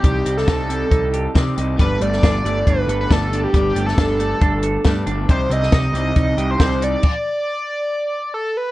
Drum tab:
CC |----------------|----------------|----------------|----------------|
HH |x-x-x-x-x-x-x-x-|x-x-x-x-x-x-x-x-|x-x-x-x-x-x-x-x-|x-x-x-x-x-x-x-x-|
SD |---oo-------o---|---oo-------o---|---oo-------o---|---oo-------o---|
BD |o---o---o---o---|o---o---o---o---|o---o---o---o---|o---o---o---o---|

CC |x---------------|
HH |----------------|
SD |----------------|
BD |o---------------|